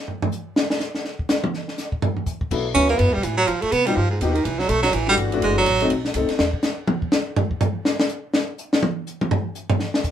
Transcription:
0.08 floor tom
0.22 floor tom
0.32 hi-hat pedal
0.56 snare
0.70 snare
0.80 snare, hi-hat pedal
0.95 snare
1.05 snare
1.19 kick
1.29 snare, hi-hat pedal
1.44 high tom
1.54 snare
1.68 snare
1.78 snare, hi-hat pedal
1.92 kick
2.02 floor tom
2.17 floor tom
2.26 kick, hi-hat pedal
2.41 kick
2.51 B1 F#3 B3 E4 A4, kick, crash
2.74 D2 F#3 B3 C#4 E4 B4, kick, hi-hat pedal, ride
2.89 A#3, ride
2.98 F#2 B3, kick, ride
3.08 D2
3.13 B1 G3
3.23 A2 E3, kick, hi-hat pedal, ride
3.37 F#3
3.48 D3 F3, kick, ride
3.62 A3, muted upright bass stroke, ride
3.72 C3 B3, kick, hi-hat pedal, ride
3.86 F3 G3 A#3 D#4 G4, ride
3.96 G2 F3, kick
4.10 G#2
4.21 D#2 B2 F3 A#3 D#4 G4, kick, hi-hat pedal, ride
4.34 D#3, ride
4.45 C2 E3, kick, ride
4.59 F#3, snare
4.69 B1 A3, kick, hi-hat pedal, ride
4.82 F#3, snare, ride
4.93 A1 E3, kick, ride
5.08 E3 G3 A3 D4 F#4, snare
5.17 G1, kick, hi-hat pedal, ride
5.32 E3 A3 D4 F#4, ride
5.42 F#1 G#3, kick, ride
5.58 F#3
5.66 A1, kick, hi-hat pedal, ride
5.80 A3 C4 D#4 F#4, ride
5.90 B1, kick, ride
6.05 snare
6.14 C2 A3 C4 D#4 A4, kick, hi-hat pedal, ride
6.29 muted upright bass stroke, snare, ride
6.39 E2, snare
6.53 kick
6.63 snare, hi-hat pedal
6.87 high tom
7.02 kick
7.12 snare, hi-hat pedal
7.36 floor tom
7.51 kick
7.60 floor tom, hi-hat pedal
7.85 snare
8.00 snare
8.09 hi-hat pedal
8.34 snare
8.58 hi-hat pedal
8.73 snare
8.83 high tom
9.07 hi-hat pedal
9.21 high tom
9.31 floor tom
9.55 hi-hat pedal
9.70 floor tom
9.80 snare
9.94 snare
10.04 kick, hi-hat pedal

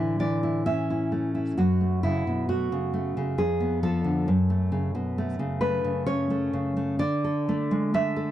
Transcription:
Already playing: A2 D3 E3 E4 C#5
0.19 E3 D5
0.43 E4
0.66 C#4 E5
0.90 E4
1.12 A3
1.35 E4
1.57 F#2 F#4
1.81 A3
2.03 C#3 E4
2.27 B2
2.49 A3 F#4
2.72 C#3
2.94 A3
3.17 C#3
3.38 F2 G#4
3.60 B3
3.83 F3 A4
4.04 D3
4.28 F#2
4.50 A3
4.72 C#3
4.95 B2
5.18 A3
5.39 C#3
5.61 A3 B4
5.84 C#3
6.06 C#4 C#5
6.30 A3
6.53 C#3
6.77 A3
6.99 D3 D5
7.24 A4
7.49 A3
7.71 G#3
7.94 A3 E5
8.16 A4

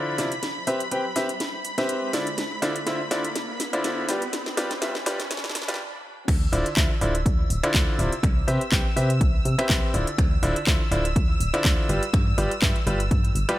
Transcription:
Already playing: D3 E4 F4 C5 D5 B5, riser
0.18 C3 E4 F4 C5 D5, snare, open hi-hat
0.32 closed hi-hat
0.43 snare, closed hi-hat
0.67 C4 G4 B4 C5 E5, open hi-hat
0.80 closed hi-hat
0.91 C4 G4 B4 C5 G5, closed hi-hat
1.16 C4 G4 B4 C5 E5, snare, open hi-hat
1.29 closed hi-hat
1.40 snare, closed hi-hat
1.65 open hi-hat
1.78 C4 G4 B4 C5 E5, snare, closed hi-hat
1.89 closed hi-hat
2.13 D3 E4 F4 C5 D5, snare, open hi-hat
2.27 closed hi-hat
2.38 snare, closed hi-hat
2.62 D3 E4 F4 C5 D5, snare, open hi-hat
2.76 closed hi-hat
2.87 D3 E4 F4 C5 E5, snare, closed hi-hat
3.11 D3 E4 F4 C5 D5, snare, open hi-hat
3.24 closed hi-hat
3.36 snare, closed hi-hat
3.60 snare, open hi-hat
3.73 D3 E4 F4 C5 D5, closed hi-hat
3.84 snare, closed hi-hat
4.09 G3 F4 G4 B4 D5, snare, open hi-hat
4.22 closed hi-hat
4.33 snare, closed hi-hat
4.46 snare
4.57 G3 F4 G4 B4 D5, snare, open hi-hat
4.71 snare, closed hi-hat
4.82 G3 F4 G4 B4 E5, snare, closed hi-hat
4.95 snare
5.06 G3 F4 G4 B4 D5, snare, open hi-hat
5.20 snare, closed hi-hat
5.31 snare, closed hi-hat
5.37 snare
5.44 snare
5.49 snare
5.55 snare, open hi-hat
5.62 snare
5.68 G3 F4 G4 B4 D5, snare, closed hi-hat
5.74 snare
6.28 D2 E6, finger snap, kick, closed hi-hat, crash
6.52 D1 D3 E4 F4 C5 D5, open hi-hat
6.66 closed hi-hat
6.77 D2 D3 E4 F4 C5 E5, kick, clap, closed hi-hat
7.01 D1 D3 E4 F4 C5 D5, open hi-hat
7.15 closed hi-hat
7.26 D2, kick, closed hi-hat
7.50 D1, open hi-hat
7.63 D3 E4 F4 C5 D5, finger snap, closed hi-hat
7.74 D2, kick, clap, closed hi-hat
7.99 D1 C3 E4 F4 C5 D5, open hi-hat
8.12 closed hi-hat
8.23 C2, finger snap, kick, closed hi-hat
8.48 C3 C4 G4 B4 C5 E5, open hi-hat
8.61 closed hi-hat
8.72 C2 C4 G4 B4 C5 G5, kick, clap, closed hi-hat
8.96 C3 C4 G4 B4 C5 E5, open hi-hat
9.10 closed hi-hat
9.21 C2, kick, closed hi-hat
9.45 C3, open hi-hat
9.58 C4 G4 B4 C5 E5, finger snap, closed hi-hat
9.69 C2, kick, clap, closed hi-hat
9.94 D1 D3 E4 F4 C5 D5, open hi-hat
10.07 closed hi-hat
10.18 D2, finger snap, kick, closed hi-hat
10.43 D1 D3 E4 F4 C5 D5, open hi-hat
10.56 closed hi-hat
10.67 D2 D3 E4 F4 C5 E5, kick, clap, closed hi-hat
10.91 D1 D3 E4 F4 C5 D5, open hi-hat
11.05 closed hi-hat
11.16 D2, kick, closed hi-hat
11.40 D1, open hi-hat
11.54 D3 E4 F4 C5 D5, finger snap, closed hi-hat
11.65 D2, kick, clap, closed hi-hat
11.89 G1 G3 F4 G4 B4 D5, open hi-hat
12.03 closed hi-hat
12.13 G2, finger snap, kick, closed hi-hat
12.38 G1 G3 F4 G4 B4 D5, open hi-hat
12.51 closed hi-hat
12.62 G2 G3 F4 G4 B4 E5, kick, clap, closed hi-hat
12.76 closed hi-hat
12.87 G1 G3 F4 G4 B4 D5, open hi-hat
13.00 closed hi-hat
13.11 G2, kick, closed hi-hat
13.25 closed hi-hat
13.35 G1, open hi-hat
13.49 G3 F4 G4 B4 D5, finger snap, closed hi-hat

